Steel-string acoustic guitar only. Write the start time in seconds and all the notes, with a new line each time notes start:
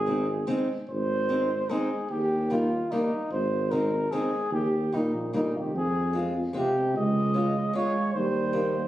0.06 G#3 C4 D#4
0.47 G#3 C4 D#4
1.29 G#3 C4 D#4
1.69 G#3 C4 D#4
2.50 G3 A#3 D#4
2.92 G3 A#3 D#4
3.71 G#3 C4 D#4
4.12 G#3 C4 D#4
4.92 G3 A#3 D#4
5.33 G3 A#3 D#4
6.13 G#3 C4 F4
6.53 G#3 C4 F4
7.34 G#3 C#4 F4
7.73 G#3 C#4 F4
8.53 G3 A#3 D#4